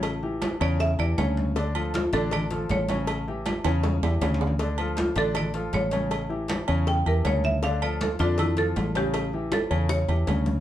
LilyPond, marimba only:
\new Staff \with { instrumentName = "Marimba" } { \time 4/4 \key d \minor \tempo 4 = 158 r4. d''8 e''8 d''8 cis''4 | r4 f'8 a'8 d''4 cis''4~ | cis''8 r2. r8 | r4 f'8 a'8 d''4 cis''4~ |
cis''8 r4. g''8 bes'8 cis''8 e''8 | f''8 d''8 a'8 f'8 e'8 a'8 r8 g'8~ | g'4 a'4 cis''4. r8 | }